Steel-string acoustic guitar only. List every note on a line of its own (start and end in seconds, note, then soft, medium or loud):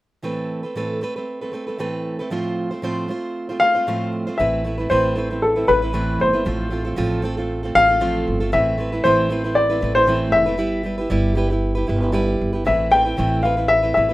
0.22 0.64 A2 medium
0.22 0.64 E3 medium
0.22 0.64 A3 medium
0.22 0.64 C4 medium
0.22 0.63 A4 medium
0.22 0.62 B4 medium
0.63 0.75 A3 soft
0.63 0.76 C4 soft
0.63 0.76 A4 soft
0.63 0.75 B4 soft
0.75 1.02 A2 medium
0.75 1.02 E3 medium
0.75 1.00 A3 medium
0.75 1.01 C4 medium
0.75 1.02 A4 medium
0.75 1.03 B4 medium
1.01 1.16 A3 medium
1.01 1.16 C4 medium
1.01 1.16 A4 medium
1.01 1.15 B4 medium
1.16 1.43 A3 soft
1.16 1.42 C4 soft
1.16 1.41 A4 soft
1.16 1.40 B4 soft
1.41 1.51 A3 soft
1.41 1.52 C4 soft
1.41 1.53 A4 soft
1.41 1.54 B4 soft
1.52 1.67 A3 soft
1.52 1.68 C4 soft
1.52 1.67 A4 medium
1.52 1.66 B4 medium
1.67 1.78 A3 soft
1.67 1.79 C4 soft
1.67 1.79 A4 soft
1.67 1.79 B4 soft
1.78 2.19 A2 medium
1.78 2.20 E3 medium
1.78 2.20 A3 medium
1.78 2.20 C4 medium
1.78 2.19 A4 medium
1.78 2.18 B4 medium
2.19 2.30 A3 soft
2.19 2.31 C4 soft
2.19 2.32 A4 soft
2.19 2.31 B4 soft
2.30 2.71 A2 medium
2.30 2.72 F3 medium
2.30 2.72 A3 medium
2.30 2.72 C4 medium
2.30 2.71 F4 medium
2.30 2.70 C5 medium
2.71 2.82 A3 soft
2.71 2.83 C4 soft
2.71 2.83 F4 soft
2.71 2.83 C5 soft
2.82 3.09 A2 medium
2.82 3.09 F3 medium
2.82 3.07 A3 medium
2.82 3.08 C4 medium
2.82 3.09 F4 medium
2.82 3.10 C5 medium
3.08 3.49 A3 soft
3.08 3.49 C4 medium
3.08 3.49 F4 medium
3.08 3.48 C5 medium
3.49 3.59 A3 soft
3.49 3.60 C4 soft
3.49 3.61 F4 medium
3.49 3.61 C5 soft
3.60 3.75 A3 soft
3.60 3.76 C4 soft
3.60 3.75 F4 soft
3.60 3.74 C5 soft
3.75 3.87 A3 soft
3.75 3.87 C4 soft
3.75 3.87 F4 soft
3.75 3.87 C5 soft
3.87 4.27 A2 medium
3.87 4.27 F3 medium
3.87 4.28 A3 medium
3.87 4.27 C4 medium
3.87 4.26 F4 medium
3.87 4.26 C5 medium
4.27 4.38 A3 soft
4.27 4.39 C4 soft
4.27 4.39 F4 soft
4.27 4.39 C5 soft
4.39 4.65 A2 medium
4.39 4.65 E3 medium
4.39 4.63 A3 medium
4.39 4.64 C4 medium
4.39 4.65 E4 medium
4.39 4.66 B4 medium
4.64 4.79 A3 soft
4.64 4.79 C4 soft
4.64 4.78 E4 medium
4.64 4.76 B4 medium
4.78 4.89 A3 soft
4.78 4.90 C4 soft
4.78 4.90 E4 soft
4.78 4.90 B4 soft
4.90 5.16 A2 medium
4.90 5.16 E3 medium
4.90 5.14 A3 medium
4.90 5.16 C4 medium
4.90 5.16 E4 medium
4.90 5.17 B4 medium
5.16 5.30 A3 medium
5.16 5.31 C4 medium
5.16 5.30 E4 medium
5.16 5.29 B4 medium
5.30 5.58 A3 soft
5.30 5.56 C4 soft
5.30 5.56 E4 soft
5.30 5.55 B4 soft
5.56 5.66 A3 soft
5.56 5.67 C4 soft
5.56 5.68 E4 soft
5.56 5.68 B4 soft
5.67 5.82 A3 soft
5.67 5.83 C4 soft
5.67 5.82 E4 medium
5.67 5.81 B4 soft
5.82 5.93 A3 soft
5.82 5.93 C4 soft
5.82 5.93 E4 soft
5.82 5.94 B4 soft
5.93 6.34 A2 medium
5.93 6.34 E3 medium
5.93 6.34 A3 medium
5.93 6.34 C4 medium
5.93 6.33 E4 medium
5.93 6.32 B4 medium
6.33 6.45 A3 soft
6.33 6.45 C4 soft
6.33 6.46 E4 soft
6.33 6.45 B4 soft
6.45 6.71 A2 medium
6.45 6.72 F3 medium
6.45 6.69 A3 medium
6.45 6.70 C4 medium
6.45 6.71 F4 medium
6.45 6.72 A4 medium
6.71 6.85 A3 soft
6.71 6.86 C4 medium
6.71 6.85 F4 medium
6.71 6.83 A4 soft
6.85 6.96 A3 soft
6.85 6.96 C4 soft
6.85 6.97 F4 soft
6.85 6.97 A4 soft
6.96 7.23 A2 medium
6.96 7.23 F3 medium
6.96 7.21 A3 medium
6.96 7.22 C4 medium
6.96 7.23 F4 medium
6.96 7.24 A4 medium
7.22 7.37 A3 medium
7.22 7.38 C4 medium
7.22 7.37 F4 medium
7.22 7.36 A4 medium
7.37 7.65 A3 soft
7.37 7.64 C4 soft
7.37 7.63 F4 soft
7.37 7.62 A4 soft
7.63 7.74 A3 soft
7.63 7.75 C4 soft
7.63 7.76 F4 soft
7.63 7.75 A4 soft
7.75 7.89 A3 soft
7.75 7.90 C4 soft
7.75 7.89 F4 medium
7.75 7.88 A4 soft
7.89 8.00 A3 soft
7.89 8.00 C4 soft
7.89 8.00 F4 soft
7.89 8.01 A4 soft
8.00 8.41 A2 medium
8.00 8.41 F3 medium
8.00 8.41 A3 medium
8.00 8.41 C4 medium
8.00 8.40 F4 medium
8.00 8.39 A4 medium
8.40 8.52 A3 soft
8.40 8.52 C4 soft
8.40 8.53 F4 soft
8.40 8.53 A4 medium
8.52 8.78 A2 medium
8.52 8.79 E3 medium
8.52 8.76 A3 medium
8.52 8.77 C4 medium
8.52 8.78 E4 medium
8.52 8.79 B4 medium
8.78 8.92 A3 medium
8.78 8.93 C4 medium
8.78 8.92 E4 medium
8.78 8.91 B4 medium
8.92 9.04 A3 soft
8.92 9.04 C4 soft
8.92 9.05 E4 soft
8.92 9.04 B4 soft
9.04 9.30 A2 medium
9.04 9.31 E3 medium
9.04 9.28 A3 medium
9.04 9.29 C4 medium
9.04 9.30 E4 medium
9.04 9.31 B4 medium
9.29 9.44 A3 medium
9.29 9.45 C4 medium
9.29 9.44 E4 medium
9.29 9.43 B4 medium
9.44 9.71 A3 soft
9.44 9.70 C4 soft
9.44 9.70 E4 soft
9.44 9.68 B4 soft
9.70 9.80 A3 soft
9.70 9.81 C4 soft
9.70 9.82 E4 soft
9.70 9.82 B4 medium
9.81 9.96 A3 soft
9.81 9.96 C4 medium
9.81 9.95 E4 soft
9.81 9.94 B4 medium
9.95 10.06 A3 soft
9.95 10.06 C4 soft
9.95 10.07 E4 soft
9.95 10.07 B4 soft
10.07 10.48 A2 medium
10.07 10.48 E3 medium
10.07 10.48 A3 medium
10.07 10.47 C4 medium
10.07 10.46 E4 medium
10.07 10.45 B4 medium
10.46 10.57 A3 soft
10.46 10.58 C4 soft
10.46 10.57 E4 soft
10.46 10.59 B4 medium
10.58 10.82 G3 medium
10.58 10.83 E4 medium
10.58 10.84 G4 medium
10.58 10.85 B4 medium
10.83 10.99 G3 medium
10.83 10.99 E4 medium
10.83 10.98 G4 medium
10.83 10.97 B4 medium
10.98 11.10 E4 soft
10.98 11.10 G4 soft
10.98 11.11 B4 soft
11.10 11.34 G3 medium
11.10 11.35 E4 medium
11.10 11.36 G4 medium
11.10 11.37 B4 medium
11.35 11.51 G3 medium
11.35 11.51 E4 medium
11.35 11.50 G4 medium
11.35 11.49 B4 medium
11.50 11.77 E4 soft
11.50 11.76 G4 soft
11.50 11.74 B4 soft
11.75 11.86 E4 soft
11.75 11.87 G4 soft
11.75 11.88 B4 medium
11.87 12.02 G3 medium
11.87 12.02 E4 medium
11.87 12.01 G4 medium
11.87 11.99 B4 medium
12.01 12.12 E4 soft
12.01 12.12 G4 soft
12.01 12.13 B4 medium
12.12 12.54 G3 medium
12.12 12.54 E4 medium
12.12 12.53 G4 medium
12.12 12.52 B4 medium
12.53 12.65 E4 soft
12.53 12.66 G4 soft
12.53 12.65 B4 soft
12.65 12.92 A2 medium
12.65 12.92 E3 medium
12.65 12.90 A3 medium
12.65 12.91 C4 medium
12.65 12.92 E4 medium
12.65 12.93 B4 medium
12.91 13.06 A3 medium
12.91 13.06 C4 medium
12.91 13.05 E4 soft
12.91 13.04 B4 medium
13.05 13.16 A3 soft
13.05 13.17 C4 soft
13.05 13.17 E4 soft
13.05 13.18 B4 soft
13.17 13.44 A2 medium
13.17 13.44 E3 medium
13.17 13.41 A3 medium
13.17 13.43 C4 medium
13.17 13.43 E4 medium
13.17 13.44 B4 medium
13.43 13.58 A3 medium
13.43 13.57 C4 medium
13.43 13.57 E4 medium
13.43 13.56 B4 medium
13.57 13.84 A3 soft
13.57 13.83 C4 soft
13.57 13.82 E4 soft
13.57 13.81 B4 soft
13.83 13.94 A3 soft
13.83 13.95 C4 soft
13.83 13.96 E4 soft
13.83 13.95 B4 medium
13.95 14.10 A3 medium
13.95 14.10 C4 soft
13.95 14.09 E4 medium
13.95 14.08 B4 soft
14.09 14.14 E4 soft
14.09 14.14 B4 soft